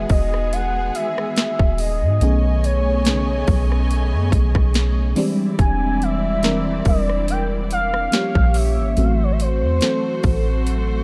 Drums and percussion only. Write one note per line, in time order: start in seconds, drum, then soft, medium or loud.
0.09 kick medium
0.09 open hi-hat medium
0.34 cross-stick medium
0.53 closed hi-hat medium
0.95 closed hi-hat medium
1.18 cross-stick medium
1.36 snare loud
1.36 closed hi-hat medium
1.59 kick loud
1.78 open hi-hat medium
2.21 closed hi-hat medium
2.64 closed hi-hat medium
3.05 snare loud
3.05 closed hi-hat medium
3.48 kick loud
3.48 open hi-hat medium
3.72 cross-stick medium
3.91 closed hi-hat medium
4.32 kick medium
4.32 closed hi-hat medium
4.55 kick medium
4.55 cross-stick medium
4.74 snare loud
4.74 closed hi-hat medium
5.16 open hi-hat medium
5.59 kick loud
5.59 closed hi-hat medium
6.02 closed hi-hat medium
6.43 snare loud
6.43 closed hi-hat medium
6.85 kick loud
6.85 open hi-hat medium
7.09 cross-stick medium
7.28 closed hi-hat medium
7.71 closed hi-hat medium
7.94 cross-stick medium
8.12 snare loud
8.12 closed hi-hat medium
8.35 kick loud
8.54 open hi-hat medium
8.97 closed hi-hat medium
9.40 closed hi-hat medium
9.81 snare loud
9.81 closed hi-hat medium
10.23 kick loud
10.23 open hi-hat medium
10.67 closed hi-hat medium